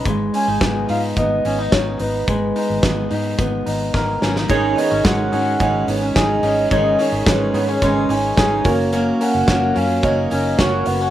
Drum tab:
HH |x-o-x-o-x-o-x-o-|x-o-x-o-x-o-----|x-o-x-o-x-o-x-o-|x-o-x-o-x-o-x-o-|
SD |----o-------o---|----o-------o-oo|----o-------o---|----o-------o---|
BD |o---o---o---o---|o---o---o---o---|o---o---o---o---|o---o---o---o-o-|

HH |x-o-x-o-x-o-x-o-|
SD |----o-------o---|
BD |----o---o---o---|